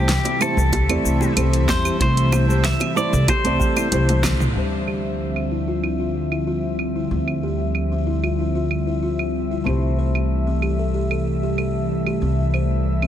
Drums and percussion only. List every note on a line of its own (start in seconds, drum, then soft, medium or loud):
0.09 snare medium
0.09 closed hi-hat medium
0.09 shaker soft
0.25 closed hi-hat soft
0.25 high bongo medium
0.41 claves medium
0.41 shaker medium
0.58 shaker soft
0.73 kick loud
0.73 closed hi-hat medium
0.73 high bongo medium
0.73 shaker soft
0.90 closed hi-hat soft
0.90 claves medium
1.06 shaker medium
1.21 high bongo medium
1.21 shaker soft
1.37 closed hi-hat medium
1.37 claves medium
1.37 shaker soft
1.53 closed hi-hat soft
1.69 kick loud
1.69 snare medium
1.69 high bongo medium
1.69 shaker medium
1.85 claves medium
1.85 shaker soft
2.00 kick loud
2.00 closed hi-hat medium
2.00 shaker soft
2.17 closed hi-hat soft
2.32 high bongo medium
2.32 claves medium
2.32 shaker medium
2.50 shaker soft
2.65 snare medium
2.65 closed hi-hat medium
2.65 shaker soft
2.80 closed hi-hat soft
2.80 high bongo medium
2.80 claves medium
2.97 shaker medium
3.13 shaker soft
3.28 kick loud
3.28 closed hi-hat medium
3.28 high bongo loud
3.28 claves medium
3.28 shaker soft
3.45 closed hi-hat soft
3.60 kick loud
3.60 shaker medium
3.76 high bongo medium
3.76 claves medium
3.76 shaker soft
3.92 closed hi-hat medium
3.92 high tom medium
3.92 shaker soft
4.09 closed hi-hat soft
4.09 high tom medium
4.23 kick medium
4.23 snare medium
4.23 mid tom medium
4.23 high bongo medium
4.23 claves medium
4.23 shaker medium
4.40 mid tom medium
4.40 shaker soft
4.88 claves medium
5.36 claves medium
5.84 claves medium
6.32 claves medium
6.79 claves medium
7.28 claves medium
7.75 claves medium
8.24 claves medium
8.71 claves medium
9.19 claves medium
9.66 claves medium
10.15 claves medium
10.62 claves medium
11.11 claves medium
11.58 claves medium
12.06 claves medium
12.54 claves medium
13.02 claves medium